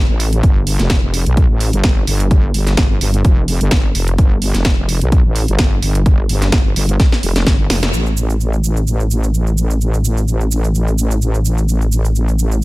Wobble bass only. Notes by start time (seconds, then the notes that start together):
0.09 A1
0.43 G1
0.80 F1
1.03 F1
1.26 B1
1.50 A1
1.73 G1
1.84 G1
2.07 G1
2.54 G1
2.78 G1
3.01 G1
3.25 F1
3.61 G1
3.72 G1
3.95 F1
4.18 G1
4.55 F1
4.78 F1
5.01 B1
5.25 A1
5.48 G1
5.59 G1
5.82 G1
6.29 G1
6.53 G1
6.76 G1
7.23 F1
7.46 G1
7.70 F1
7.93 A1